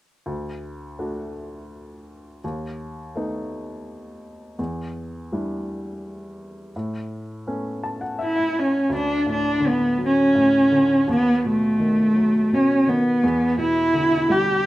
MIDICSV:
0, 0, Header, 1, 3, 480
1, 0, Start_track
1, 0, Key_signature, 2, "major"
1, 0, Tempo, 720288
1, 173, Time_signature, 3, 2, 24, 8
1, 9770, End_track
2, 0, Start_track
2, 0, Title_t, "Cello"
2, 0, Program_c, 0, 42
2, 5484, Note_on_c, 0, 64, 64
2, 5727, Note_on_c, 0, 61, 55
2, 5737, Note_off_c, 0, 64, 0
2, 5956, Note_off_c, 0, 61, 0
2, 5966, Note_on_c, 0, 62, 66
2, 6179, Note_off_c, 0, 62, 0
2, 6212, Note_on_c, 0, 62, 68
2, 6449, Note_on_c, 0, 59, 64
2, 6459, Note_off_c, 0, 62, 0
2, 6677, Note_off_c, 0, 59, 0
2, 6702, Note_on_c, 0, 61, 70
2, 7377, Note_off_c, 0, 61, 0
2, 7411, Note_on_c, 0, 59, 71
2, 7622, Note_off_c, 0, 59, 0
2, 7649, Note_on_c, 0, 57, 76
2, 8358, Note_on_c, 0, 61, 69
2, 8368, Note_off_c, 0, 57, 0
2, 8585, Note_on_c, 0, 59, 68
2, 8595, Note_off_c, 0, 61, 0
2, 9059, Note_off_c, 0, 59, 0
2, 9063, Note_on_c, 0, 64, 76
2, 9540, Note_on_c, 0, 67, 69
2, 9550, Note_off_c, 0, 64, 0
2, 9770, Note_off_c, 0, 67, 0
2, 9770, End_track
3, 0, Start_track
3, 0, Title_t, "Upright piano"
3, 0, Program_c, 1, 0
3, 173, Note_on_c, 1, 38, 48
3, 314, Control_c, 1, 64, 127
3, 659, Note_on_c, 1, 57, 33
3, 660, Note_on_c, 1, 62, 30
3, 661, Note_on_c, 1, 66, 39
3, 1592, Note_off_c, 1, 38, 0
3, 1594, Note_off_c, 1, 57, 0
3, 1594, Note_off_c, 1, 62, 0
3, 1595, Note_off_c, 1, 66, 0
3, 1628, Control_c, 1, 64, 0
3, 1628, Note_on_c, 1, 39, 47
3, 1761, Control_c, 1, 64, 127
3, 2102, Note_on_c, 1, 57, 36
3, 2109, Note_on_c, 1, 59, 31
3, 2111, Note_on_c, 1, 63, 38
3, 3031, Note_off_c, 1, 57, 0
3, 3034, Note_off_c, 1, 39, 0
3, 3035, Note_off_c, 1, 59, 0
3, 3036, Note_off_c, 1, 63, 0
3, 3057, Note_on_c, 1, 40, 49
3, 3066, Control_c, 1, 64, 0
3, 3194, Control_c, 1, 64, 127
3, 3548, Note_on_c, 1, 55, 36
3, 3551, Note_on_c, 1, 62, 33
3, 3551, Note_on_c, 1, 64, 41
3, 4468, Note_off_c, 1, 40, 0
3, 4474, Note_off_c, 1, 55, 0
3, 4476, Note_off_c, 1, 62, 0
3, 4476, Note_off_c, 1, 64, 0
3, 4501, Control_c, 1, 64, 0
3, 4505, Note_on_c, 1, 45, 46
3, 4610, Control_c, 1, 64, 127
3, 4979, Note_on_c, 1, 57, 34
3, 4979, Note_on_c, 1, 59, 30
3, 4981, Note_on_c, 1, 61, 42
3, 5221, Note_on_c, 1, 81, 51
3, 5333, Note_off_c, 1, 81, 0
3, 5338, Note_on_c, 1, 78, 47
3, 5452, Note_off_c, 1, 78, 0
3, 5456, Note_on_c, 1, 76, 49
3, 5561, Note_off_c, 1, 76, 0
3, 5571, Note_on_c, 1, 76, 38
3, 5913, Note_off_c, 1, 76, 0
3, 5919, Note_off_c, 1, 57, 0
3, 5919, Note_off_c, 1, 59, 0
3, 5920, Note_off_c, 1, 61, 0
3, 5923, Note_off_c, 1, 45, 0
3, 5927, Note_on_c, 1, 38, 50
3, 5951, Control_c, 1, 64, 0
3, 6079, Control_c, 1, 64, 127
3, 6173, Note_on_c, 1, 45, 42
3, 6398, Note_on_c, 1, 50, 44
3, 6652, Note_on_c, 1, 54, 44
3, 6887, Note_off_c, 1, 45, 0
3, 6897, Note_on_c, 1, 45, 45
3, 7132, Note_off_c, 1, 50, 0
3, 7142, Note_on_c, 1, 50, 41
3, 7349, Note_off_c, 1, 38, 0
3, 7357, Note_off_c, 1, 54, 0
3, 7366, Note_off_c, 1, 45, 0
3, 7376, Note_off_c, 1, 50, 0
3, 7381, Note_on_c, 1, 39, 53
3, 7393, Control_c, 1, 64, 0
3, 7527, Control_c, 1, 64, 127
3, 7629, Note_on_c, 1, 47, 39
3, 7858, Note_on_c, 1, 51, 44
3, 8104, Note_on_c, 1, 54, 46
3, 8337, Note_off_c, 1, 47, 0
3, 8347, Note_on_c, 1, 47, 40
3, 8567, Note_off_c, 1, 51, 0
3, 8577, Note_on_c, 1, 51, 41
3, 8789, Note_off_c, 1, 39, 0
3, 8796, Note_off_c, 1, 54, 0
3, 8806, Note_off_c, 1, 47, 0
3, 8809, Note_off_c, 1, 51, 0
3, 8819, Note_on_c, 1, 40, 57
3, 8825, Control_c, 1, 64, 0
3, 8963, Control_c, 1, 64, 127
3, 9047, Note_on_c, 1, 47, 41
3, 9289, Note_on_c, 1, 50, 45
3, 9524, Note_on_c, 1, 55, 46
3, 9760, Note_off_c, 1, 47, 0
3, 9770, Note_off_c, 1, 40, 0
3, 9770, Note_off_c, 1, 50, 0
3, 9770, Note_off_c, 1, 55, 0
3, 9770, End_track
0, 0, End_of_file